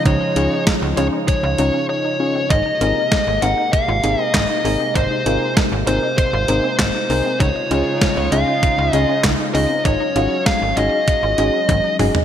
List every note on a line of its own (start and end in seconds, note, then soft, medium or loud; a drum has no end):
0.00 2.47 C#3 medium
0.00 2.47 F3 medium
0.00 7.36 G#3 medium
0.00 2.47 D#4 medium
0.05 0.18 C#2 loud
0.05 0.14 D#4 loud
0.05 0.63 C#5 medium
0.05 kick loud
0.05 closed hi-hat medium
0.21 0.29 D#4 medium
0.36 0.49 C#2 medium
0.36 0.56 C#4 medium
0.36 0.56 D#4 medium
0.36 0.56 F4 medium
0.36 0.53 F4 medium
0.36 0.56 G#4 medium
0.36 closed hi-hat medium
0.67 0.84 D#4 medium
0.67 kick loud
0.67 snare loud
0.67 closed hi-hat medium
0.82 0.94 C#2 loud
0.97 1.10 C#2 loud
0.97 1.17 C#4 medium
0.97 1.17 D#4 medium
0.97 1.17 F4 medium
0.97 1.06 F4 medium
0.97 1.17 G#4 medium
0.97 1.06 C#5 medium
0.97 closed hi-hat medium
1.13 1.30 D#4 medium
1.28 1.85 C#5 medium
1.28 kick loud
1.28 closed hi-hat medium
1.43 1.56 C#2 medium
1.43 1.52 F4 medium
1.58 1.71 C#2 loud
1.58 1.79 C#4 medium
1.58 1.79 D#4 medium
1.58 1.67 D#4 medium
1.58 1.79 F4 medium
1.58 1.79 G#4 medium
1.58 closed hi-hat medium
1.74 1.82 C#4 medium
1.89 1.98 D#4 medium
1.89 2.50 C#5 medium
2.05 2.22 D#4 medium
2.20 2.40 C#4 medium
2.20 2.40 D#4 medium
2.20 2.40 F4 medium
2.20 2.40 G#4 medium
2.35 2.44 C4 medium
2.50 2.63 G#1 loud
2.50 7.36 C3 medium
2.50 7.36 A#3 medium
2.50 2.59 D#4 loud
2.50 3.45 D#5 medium
2.50 kick loud
2.50 closed hi-hat medium
2.66 2.74 D#4 medium
2.81 2.93 G#1 loud
2.81 3.01 C4 medium
2.81 3.01 D#4 medium
2.81 2.98 F4 medium
2.81 3.01 G#4 medium
2.81 3.01 A#4 medium
2.81 closed hi-hat medium
3.12 3.29 D#4 medium
3.12 kick loud
3.12 snare loud
3.12 closed hi-hat medium
3.27 3.39 G#1 loud
3.42 3.55 G#1 loud
3.42 3.62 C4 medium
3.42 3.62 D#4 medium
3.42 3.51 F4 medium
3.42 3.62 G#4 medium
3.42 3.62 A#4 medium
3.42 3.71 F#5 loud
3.42 closed hi-hat medium
3.58 3.75 D#4 medium
3.73 4.21 F5 loud
3.73 kick loud
3.73 closed hi-hat medium
3.88 4.01 G#1 loud
3.88 3.97 F4 medium
4.04 4.16 G#1 medium
4.04 4.23 C4 medium
4.04 4.23 D#4 medium
4.04 4.12 D#4 medium
4.04 4.23 G#4 medium
4.04 4.23 A#4 medium
4.04 closed hi-hat medium
4.19 4.27 C4 medium
4.19 4.34 D#5 loud
4.34 4.47 G#1 loud
4.34 4.43 D#4 medium
4.34 4.95 D#5 medium
4.34 kick loud
4.34 snare loud
4.34 clap medium
4.34 closed hi-hat medium
4.50 4.67 D#4 medium
4.65 4.77 G#1 loud
4.65 4.85 C4 medium
4.65 4.85 D#4 medium
4.65 4.85 G#4 medium
4.65 4.85 A#4 medium
4.65 open hi-hat medium
4.80 4.89 C4 medium
4.95 5.08 G#1 loud
4.95 5.04 D#4 loud
4.95 5.53 C5 medium
4.95 kick loud
4.95 closed hi-hat medium
5.11 5.19 D#4 medium
5.26 5.38 G#1 medium
5.26 5.46 C4 medium
5.26 5.46 D#4 medium
5.26 5.43 F4 medium
5.26 5.46 G#4 medium
5.26 5.46 A#4 medium
5.26 closed hi-hat medium
5.57 5.74 D#4 medium
5.57 kick loud
5.57 snare loud
5.57 closed hi-hat medium
5.72 5.84 G#1 loud
5.87 6.00 G#1 loud
5.87 6.07 C4 medium
5.87 6.07 D#4 medium
5.87 5.96 F4 medium
5.87 6.07 G#4 medium
5.87 6.07 A#4 medium
5.87 6.16 C5 medium
5.87 closed hi-hat medium
6.03 6.20 D#4 medium
6.18 6.75 C5 medium
6.18 kick loud
6.18 closed hi-hat medium
6.33 6.46 G#1 loud
6.33 6.42 F4 medium
6.48 6.61 G#1 loud
6.48 6.68 C4 medium
6.48 6.68 D#4 medium
6.48 6.57 D#4 medium
6.48 6.68 G#4 medium
6.48 6.68 A#4 medium
6.48 closed hi-hat medium
6.64 6.72 C4 medium
6.79 6.92 G#1 loud
6.79 6.88 D#4 medium
6.79 7.40 C5 medium
6.79 kick loud
6.79 snare loud
6.79 clap medium
6.79 closed hi-hat medium
6.95 7.11 D#4 medium
7.10 7.22 C2 medium
7.10 7.30 C4 medium
7.10 7.30 D#4 medium
7.10 7.30 G#4 medium
7.10 7.30 A#4 medium
7.10 open hi-hat medium
7.25 7.34 C4 medium
7.40 7.53 C#2 loud
7.40 9.83 C#3 medium
7.40 12.25 G#3 medium
7.40 9.83 D#4 medium
7.40 7.49 D#4 loud
7.40 9.83 F4 medium
7.40 8.35 C#5 medium
7.40 kick loud
7.40 closed hi-hat medium
7.56 7.64 D#4 medium
7.71 7.83 C#2 loud
7.71 7.91 C#4 medium
7.71 7.91 D#4 medium
7.71 7.88 F4 medium
7.71 7.91 F4 medium
7.71 7.91 G#4 medium
7.71 closed hi-hat medium
8.01 8.19 D#4 medium
8.01 kick loud
8.01 snare loud
8.01 closed hi-hat medium
8.17 8.29 C#2 loud
8.32 8.45 C#2 loud
8.32 8.52 C#4 medium
8.32 8.52 D#4 medium
8.32 8.41 F4 medium
8.32 8.52 F4 medium
8.32 8.52 G#4 medium
8.32 8.95 F5 loud
8.32 closed hi-hat medium
8.48 8.64 D#4 medium
8.63 kick loud
8.63 closed hi-hat medium
8.78 8.91 C#2 loud
8.78 8.87 F4 medium
8.93 9.06 C#2 loud
8.93 9.13 C#4 medium
8.93 9.13 D#4 medium
8.93 9.02 D#4 medium
8.93 9.13 F4 medium
8.93 9.13 G#4 medium
8.93 9.20 D#5 loud
8.93 closed hi-hat medium
9.09 9.17 C#4 medium
9.24 9.36 C#2 loud
9.24 9.32 D#4 medium
9.24 kick loud
9.24 snare loud
9.24 clap medium
9.24 closed hi-hat medium
9.39 9.56 D#4 medium
9.54 9.67 C#2 loud
9.54 9.74 C#4 medium
9.54 9.74 D#4 medium
9.54 9.74 F4 medium
9.54 9.74 G#4 medium
9.54 9.83 D#5 medium
9.54 open hi-hat medium
9.70 9.78 C4 medium
9.85 9.98 G#1 loud
9.85 12.25 F#3 medium
9.85 12.25 C#4 medium
9.85 9.94 D#4 loud
9.85 10.42 C#5 medium
9.85 kick loud
9.85 closed hi-hat medium
10.01 10.09 D#4 medium
10.16 10.28 G#1 loud
10.16 10.36 C#4 medium
10.16 10.36 D#4 medium
10.16 10.33 F4 medium
10.16 10.36 F#4 medium
10.16 10.36 G#4 medium
10.16 closed hi-hat medium
10.46 10.63 D#4 medium
10.46 10.78 F5 loud
10.46 kick loud
10.46 snare loud
10.46 closed hi-hat medium
10.62 10.74 G#1 medium
10.77 10.89 G#1 loud
10.77 10.97 C#4 medium
10.77 10.97 D#4 medium
10.77 10.85 F4 medium
10.77 10.97 F#4 medium
10.77 10.97 G#4 medium
10.77 11.95 D#5 loud
10.77 closed hi-hat medium
10.92 11.09 D#4 medium
11.08 kick loud
11.08 closed hi-hat medium
11.23 11.35 G#1 medium
11.23 11.31 F4 medium
11.38 11.51 G#1 loud
11.38 11.58 C#4 medium
11.38 11.58 D#4 medium
11.38 11.47 D#4 medium
11.38 11.58 F#4 medium
11.38 11.58 G#4 medium
11.38 closed hi-hat medium
11.54 11.62 C#4 medium
11.69 11.81 G#1 loud
11.69 11.77 D#4 medium
11.69 kick loud
11.69 closed hi-hat medium
11.69 high tom medium
11.84 12.01 D#4 medium
11.99 12.12 F#1 medium
11.99 12.19 C#4 medium
11.99 12.19 D#4 medium
11.99 12.19 F#4 medium
11.99 12.19 G#4 loud
11.99 mid tom loud
11.99 open hi-hat medium
12.15 12.23 C4 medium
12.15 floor tom loud